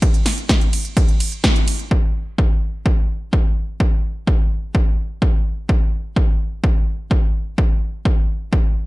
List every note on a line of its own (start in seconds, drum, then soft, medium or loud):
0.02 kick loud
0.02 closed hi-hat loud
0.02 ride medium
0.14 closed hi-hat soft
0.26 snare medium
0.26 open hi-hat loud
0.26 ride medium
0.38 closed hi-hat soft
0.49 kick loud
0.49 snare loud
0.49 closed hi-hat loud
0.49 ride medium
0.61 closed hi-hat soft
0.73 open hi-hat medium
0.73 ride medium
0.85 closed hi-hat soft
0.97 kick loud
0.97 closed hi-hat loud
0.97 ride medium
1.09 closed hi-hat soft
1.20 open hi-hat loud
1.20 ride medium
1.32 closed hi-hat soft
1.44 kick loud
1.44 snare loud
1.44 closed hi-hat medium
1.44 ride medium
1.56 closed hi-hat soft
1.68 open hi-hat medium
1.68 ride medium
1.79 closed hi-hat soft
1.91 kick loud
2.38 kick loud
2.86 kick loud
3.33 kick loud
3.80 kick loud
4.27 kick loud
4.75 kick loud
5.22 kick loud
5.69 kick loud
6.16 kick loud
6.64 kick loud
7.11 kick loud
7.58 kick loud
8.05 kick loud
8.53 kick loud